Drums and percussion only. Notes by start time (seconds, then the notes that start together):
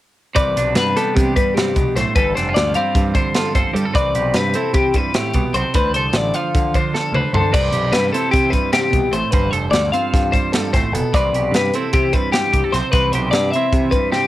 0.36 kick, closed hi-hat
0.57 closed hi-hat
0.75 snare, closed hi-hat
0.97 snare, closed hi-hat
1.16 kick, closed hi-hat
1.36 kick, closed hi-hat
1.57 snare, closed hi-hat
1.76 kick, closed hi-hat
1.97 snare, closed hi-hat
2.16 kick, closed hi-hat
2.37 snare, closed hi-hat
2.56 snare, closed hi-hat
2.74 closed hi-hat
2.95 kick, closed hi-hat
3.15 kick, closed hi-hat
3.35 snare, closed hi-hat
3.55 kick, closed hi-hat
3.76 closed hi-hat
3.95 kick, closed hi-hat
4.15 closed hi-hat
4.34 snare, closed hi-hat
4.54 closed hi-hat
4.74 kick, closed hi-hat
4.94 kick, closed hi-hat
5.14 snare, closed hi-hat
5.34 kick, closed hi-hat
5.54 closed hi-hat
5.74 kick, closed hi-hat
5.94 closed hi-hat
6.13 snare, closed hi-hat
6.34 closed hi-hat
6.55 kick, closed hi-hat
6.74 kick, closed hi-hat
6.95 snare
7.14 mid tom
7.34 floor tom
7.54 kick, closed hi-hat, crash
7.73 closed hi-hat
7.93 snare, closed hi-hat
8.14 closed hi-hat
8.33 kick, closed hi-hat
8.53 kick, closed hi-hat
8.73 snare, closed hi-hat
8.93 kick, closed hi-hat
9.13 closed hi-hat
9.32 kick, closed hi-hat
9.53 closed hi-hat
9.73 snare, closed hi-hat
9.94 closed hi-hat
10.14 kick, snare, closed hi-hat
10.34 kick, closed hi-hat
10.53 snare, closed hi-hat
10.74 kick, snare, closed hi-hat
10.95 closed hi-hat
11.14 kick, closed hi-hat
11.34 closed hi-hat
11.54 snare, closed hi-hat
11.73 closed hi-hat
11.93 kick, closed hi-hat
12.13 kick, closed hi-hat
12.33 snare, closed hi-hat
12.53 kick, closed hi-hat
12.74 snare, closed hi-hat
12.93 kick, closed hi-hat
13.13 closed hi-hat
13.33 snare, closed hi-hat
13.53 closed hi-hat
13.73 kick, closed hi-hat
13.92 kick, closed hi-hat
14.13 snare